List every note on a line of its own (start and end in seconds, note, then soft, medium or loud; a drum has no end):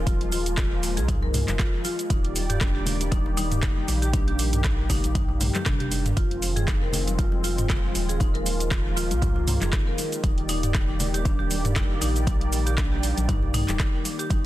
0.00 0.99 D#1 loud
0.00 2.06 D#3 medium
0.00 2.06 F3 medium
0.00 2.06 G#3 medium
0.00 2.06 F4 medium
0.06 2.08 A#3 medium
0.06 0.19 F4 medium
0.06 kick loud
0.06 closed hi-hat medium
0.06 muted conga medium
0.06 high conga medium
0.06 shaker soft
0.21 closed hi-hat soft
0.32 0.46 F4 loud
0.32 open hi-hat medium
0.32 muted conga soft
0.32 shaker medium
0.46 closed hi-hat soft
0.46 shaker medium
0.57 0.71 F4 medium
0.57 kick loud
0.57 cross-stick loud
0.57 clap loud
0.57 closed hi-hat medium
0.57 muted conga medium
0.57 shaker soft
0.83 open hi-hat medium
0.83 shaker medium
0.97 1.43 C2 medium
0.97 1.07 G#4 medium
0.97 closed hi-hat soft
0.97 muted conga soft
0.97 high conga medium
0.97 shaker medium
1.08 1.21 D#4 medium
1.08 kick loud
1.08 closed hi-hat medium
1.08 mid tom medium
1.08 high conga loud
1.08 shaker soft
1.22 1.29 A#4 medium
1.22 muted conga medium
1.34 mid tom medium
1.34 open hi-hat medium
1.34 low conga medium
1.34 shaker medium
1.48 1.68 F1 medium
1.48 clap soft
1.48 closed hi-hat soft
1.48 muted conga soft
1.48 high conga medium
1.48 shaker medium
1.59 1.72 F4 medium
1.59 kick loud
1.59 cross-stick loud
1.59 clap loud
1.59 closed hi-hat medium
1.59 shaker soft
1.85 1.98 F4 loud
1.85 open hi-hat medium
1.85 muted conga medium
1.85 shaker medium
1.99 closed hi-hat soft
1.99 shaker medium
2.10 3.72 D#1 loud
2.10 6.13 D#3 medium
2.10 6.13 G3 medium
2.10 6.13 A#3 medium
2.10 2.24 D#4 medium
2.10 6.13 G4 medium
2.10 4.12 D5 medium
2.10 kick loud
2.10 closed hi-hat medium
2.10 muted conga medium
2.10 high conga medium
2.10 shaker soft
2.25 closed hi-hat soft
2.36 open hi-hat medium
2.36 muted conga soft
2.36 shaker medium
2.50 2.60 G4 medium
2.50 closed hi-hat soft
2.50 mid tom medium
2.50 shaker medium
2.61 2.74 D4 medium
2.61 kick loud
2.61 cross-stick loud
2.61 clap loud
2.61 closed hi-hat medium
2.61 muted conga medium
2.61 shaker soft
2.75 2.81 G4 medium
2.86 open hi-hat medium
2.86 low conga medium
2.86 shaker medium
3.00 closed hi-hat soft
3.00 muted conga soft
3.00 high conga medium
3.00 shaker medium
3.12 3.24 D#4 medium
3.12 kick loud
3.12 closed hi-hat medium
3.12 high conga loud
3.12 shaker soft
3.26 muted conga medium
3.37 3.51 D#4 loud
3.37 open hi-hat medium
3.37 high conga medium
3.37 shaker medium
3.52 closed hi-hat soft
3.52 mid tom medium
3.52 muted conga soft
3.52 shaker medium
3.62 3.76 D#4 medium
3.62 kick loud
3.62 cross-stick loud
3.62 clap loud
3.62 closed hi-hat medium
3.62 high conga medium
3.62 low conga medium
3.62 shaker soft
3.88 4.99 A#1 medium
3.88 open hi-hat medium
3.88 muted conga medium
3.88 shaker medium
4.02 4.12 G4 medium
4.02 closed hi-hat soft
4.02 shaker medium
4.13 4.26 D4 medium
4.13 kick loud
4.13 closed hi-hat medium
4.13 muted conga medium
4.13 high conga medium
4.13 shaker soft
4.28 4.34 G4 medium
4.28 closed hi-hat soft
4.39 open hi-hat loud
4.39 muted conga soft
4.39 shaker medium
4.53 closed hi-hat soft
4.53 mid tom medium
4.53 shaker medium
4.63 4.77 D#4 medium
4.63 kick loud
4.63 cross-stick loud
4.63 clap loud
4.63 closed hi-hat medium
4.63 muted conga medium
4.63 shaker soft
4.90 5.03 D#4 loud
4.90 kick medium
4.90 open hi-hat loud
4.90 low conga medium
4.90 shaker medium
5.04 5.50 A#1 medium
5.04 closed hi-hat soft
5.04 muted conga soft
5.04 high conga medium
5.04 shaker medium
5.15 5.29 D#4 medium
5.15 kick loud
5.15 closed hi-hat medium
5.15 mid tom medium
5.15 high conga loud
5.15 shaker soft
5.28 muted conga medium
5.40 mid tom medium
5.40 open hi-hat medium
5.40 high tom medium
5.40 low conga medium
5.40 shaker medium
5.55 5.65 G4 medium
5.55 clap soft
5.55 closed hi-hat soft
5.55 muted conga soft
5.55 high conga medium
5.55 shaker medium
5.66 6.13 F1 loud
5.66 5.79 D4 medium
5.66 kick loud
5.66 cross-stick loud
5.66 clap loud
5.66 closed hi-hat medium
5.66 mid tom medium
5.66 shaker soft
5.80 5.86 G4 medium
5.80 closed hi-hat soft
5.80 mid tom medium
5.91 open hi-hat medium
5.91 muted conga medium
5.91 shaker medium
6.06 closed hi-hat soft
6.06 mid tom medium
6.06 shaker medium
6.17 7.79 F1 loud
6.17 14.46 D#3 medium
6.17 10.20 F3 medium
6.17 10.20 G#3 medium
6.17 8.18 C4 medium
6.17 6.30 F4 medium
6.17 10.20 F4 medium
6.17 kick loud
6.17 closed hi-hat medium
6.17 muted conga medium
6.17 high conga medium
6.17 shaker soft
6.31 closed hi-hat soft
6.42 open hi-hat medium
6.42 muted conga soft
6.42 shaker medium
6.56 6.67 G#4 medium
6.56 closed hi-hat soft
6.56 mid tom medium
6.56 shaker medium
6.68 6.80 D#4 medium
6.68 kick loud
6.68 cross-stick loud
6.68 clap loud
6.68 closed hi-hat medium
6.68 muted conga medium
6.68 shaker soft
6.82 6.88 A#4 medium
6.92 open hi-hat medium
6.92 low conga loud
6.92 shaker medium
7.07 closed hi-hat soft
7.07 muted conga soft
7.07 high conga medium
7.07 shaker medium
7.18 7.31 F4 medium
7.18 kick loud
7.18 closed hi-hat medium
7.18 high conga loud
7.18 shaker soft
7.32 muted conga medium
7.43 7.57 F4 loud
7.43 open hi-hat medium
7.43 high conga medium
7.43 shaker medium
7.58 closed hi-hat soft
7.58 mid tom medium
7.58 muted conga soft
7.58 shaker medium
7.68 7.83 F4 medium
7.68 kick loud
7.68 cross-stick loud
7.68 clap loud
7.68 closed hi-hat medium
7.68 high conga medium
7.68 low conga medium
7.68 shaker soft
7.95 9.12 D#1 loud
7.95 open hi-hat loud
7.95 muted conga medium
7.95 shaker medium
8.09 8.19 G#4 medium
8.09 closed hi-hat soft
8.09 shaker medium
8.20 10.22 A#3 medium
8.20 8.33 D#4 medium
8.20 kick loud
8.20 closed hi-hat medium
8.20 muted conga medium
8.20 high conga medium
8.20 shaker soft
8.34 8.40 A#4 medium
8.34 closed hi-hat soft
8.46 open hi-hat medium
8.46 muted conga soft
8.46 shaker loud
8.60 closed hi-hat soft
8.60 shaker medium
8.71 8.84 F4 medium
8.71 kick loud
8.71 cross-stick loud
8.71 clap loud
8.71 closed hi-hat medium
8.71 muted conga medium
8.71 shaker soft
8.97 9.10 F4 loud
8.97 open hi-hat medium
8.97 shaker loud
9.11 9.57 C2 medium
9.11 closed hi-hat soft
9.11 muted conga soft
9.11 high conga medium
9.11 shaker medium
9.22 9.35 F4 medium
9.22 kick loud
9.22 closed hi-hat medium
9.22 mid tom medium
9.22 high conga loud
9.22 shaker soft
9.36 muted conga soft
9.47 mid tom medium
9.47 open hi-hat medium
9.47 low conga medium
9.47 shaker loud
9.61 9.81 F1 medium
9.61 9.72 G#4 medium
9.61 clap soft
9.61 closed hi-hat soft
9.61 muted conga soft
9.61 high conga medium
9.61 shaker medium
9.73 9.86 D#4 medium
9.73 kick loud
9.73 cross-stick loud
9.73 clap medium
9.73 closed hi-hat medium
9.73 shaker soft
9.87 9.93 A#4 medium
9.98 open hi-hat medium
9.98 muted conga medium
9.98 shaker loud
10.12 closed hi-hat soft
10.12 shaker medium
10.23 11.86 D#1 loud
10.23 14.26 G3 medium
10.23 14.26 A#3 medium
10.23 10.36 D#4 medium
10.23 14.26 G4 medium
10.23 14.26 D5 medium
10.23 kick loud
10.23 closed hi-hat medium
10.23 muted conga medium
10.23 high conga medium
10.23 shaker soft
10.38 closed hi-hat soft
10.49 10.63 D#4 loud
10.49 open hi-hat medium
10.49 muted conga soft
10.49 shaker loud
10.63 closed hi-hat soft
10.63 mid tom medium
10.63 shaker medium
10.74 kick loud
10.74 cross-stick loud
10.74 clap loud
10.74 closed hi-hat medium
10.74 muted conga medium
10.74 shaker soft
11.00 open hi-hat medium
11.00 low conga medium
11.00 shaker loud
11.14 11.24 G4 medium
11.14 closed hi-hat soft
11.14 muted conga soft
11.14 high conga medium
11.14 shaker medium
11.25 11.38 D4 medium
11.25 kick loud
11.25 closed hi-hat medium
11.25 high conga loud
11.25 shaker soft
11.39 11.45 G4 medium
11.39 muted conga soft
11.51 open hi-hat medium
11.51 high conga medium
11.51 shaker loud
11.65 closed hi-hat soft
11.65 mid tom loud
11.65 muted conga soft
11.65 shaker medium
11.76 11.89 D#4 medium
11.76 kick loud
11.76 cross-stick loud
11.76 clap loud
11.76 closed hi-hat medium
11.76 high conga medium
11.76 low conga medium
11.76 shaker soft
12.01 13.13 A#1 medium
12.01 12.15 D#4 loud
12.01 open hi-hat medium
12.01 muted conga medium
12.01 shaker loud
12.16 closed hi-hat soft
12.16 shaker medium
12.27 12.40 D#4 medium
12.27 kick loud
12.27 closed hi-hat medium
12.27 muted conga soft
12.27 high conga medium
12.27 shaker soft
12.41 closed hi-hat soft
12.53 open hi-hat medium
12.53 muted conga soft
12.53 shaker loud
12.67 12.77 G4 medium
12.67 closed hi-hat soft
12.67 shaker medium
12.78 12.91 D4 medium
12.78 kick loud
12.78 cross-stick loud
12.78 clap loud
12.78 closed hi-hat medium
12.78 muted conga soft
12.78 shaker soft
12.92 12.98 G4 medium
13.03 open hi-hat medium
13.03 shaker loud
13.17 13.64 A#1 medium
13.17 closed hi-hat soft
13.17 muted conga soft
13.17 high conga medium
13.17 shaker medium
13.29 13.41 D#4 medium
13.29 kick loud
13.29 closed hi-hat medium
13.29 mid tom medium
13.29 high conga loud
13.29 shaker soft
13.43 muted conga medium
13.54 13.68 D#4 loud
13.54 mid tom loud
13.54 open hi-hat medium
13.54 low conga medium
13.54 shaker loud
13.68 13.88 D#1 medium
13.68 clap soft
13.68 closed hi-hat soft
13.68 muted conga soft
13.68 high conga medium
13.68 shaker medium
13.79 13.93 D#4 medium
13.79 kick loud
13.79 cross-stick loud
13.79 clap loud
13.79 closed hi-hat medium
13.79 shaker soft
14.05 open hi-hat medium
14.05 muted conga soft
14.05 shaker medium
14.19 14.29 G4 medium
14.19 closed hi-hat soft
14.19 shaker medium
14.30 14.46 F1 loud
14.30 14.46 F3 medium
14.30 14.46 G#3 medium
14.30 14.46 C4 medium
14.30 14.43 D#4 medium
14.30 14.46 F4 medium
14.30 kick loud
14.30 closed hi-hat medium
14.30 muted conga medium
14.30 high conga medium
14.30 shaker soft